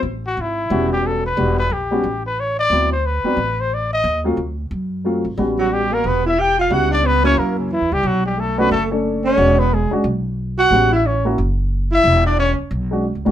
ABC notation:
X:1
M:4/4
L:1/8
Q:"Swing" 1/4=180
K:Amix
V:1 name="Trumpet"
z F E3 G A B- | B B G3 B c d- | d =c B3 c d ^d- | ^d z6 z |
z F G _B =B e g =f | f d B c ^A C E G | F G A B A z2 c- | c B ^G z4 f- |
f e c z4 e- | e d c z4 z |]
V:2 name="Upright piano"
z4 [G,B,CF]3 z | [G,B,DF] z2 [G,B,CF] z4 | [F,B,=CE] z2 [F,B,CD] z4 | z [F,A,^B,=F] z4 [^F,A,B,=F] z |
[G,B,CF]4- [G,B,CF] z3 | [G,B,CE]3 [F,_B,CE]3 z2 | z3 [A,CDF] z [A,CDA]3 | [^G,CDF] z2 [G,CDF] z4 |
[G,B,CF] z2 [_B,CEF] z4 | z4 z [^G,CDF] z [A,,=G,B,CF] |]
V:3 name="Alto saxophone"
z8 | z8 | z8 | z8 |
z F, G, _B, =B, E G =F | F D B, C ^A, C, E, G, | F, G, A, B, A, z2 C- | C B, ^G, z4 F- |
F E C z4 E- | E D C z4 z |]
V:4 name="Upright bass" clef=bass
A,,,2 ^G,,,2 E,,,4 | E,,,2 _B,,,2 A,,,4 | D,,3 z A,,,4 | ^D,,2 =D,,2 F,,3 ^G,,, |
A,,,4 E,,,4 | C,,4 F,,2- (3F,, E,, C,, | B,,,4 F,,,4 | E,,,3 z B,,,4 |
A,,,4 F,,,4 | E,,,3 z B,,,2- (3B,,, C,, ^G,,, |]